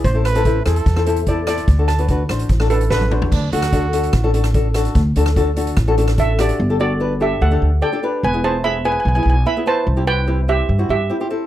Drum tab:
CC |----------------|----------------|x---------------|----------------|
HH |x-xxx-xxx-xxx-xx|x-xxx-xxx-xx----|--xxx-xxx-xxx-xx|x-xxx-xxx-xxx-xx|
SD |--r---r--r----r-|--r---r--r--o---|---r----r--r--r-|---r----r--r--r-|
T1 |----------------|-------------o--|----------------|----------------|
T2 |----------------|--------------o-|----------------|----------------|
FT |----------------|---------------o|----------------|----------------|
BD |o---o---o---o---|o---o---o---o---|o---o---o---o---|o---o---o---o---|

CC |----------------|----------------|----------------|
HH |----------------|----------------|----------------|
SD |----------------|----------------|----------------|
T1 |----------------|----------------|----------------|
T2 |----------------|----------------|----------------|
FT |----------------|----------------|----------------|
BD |----------------|----------------|----------------|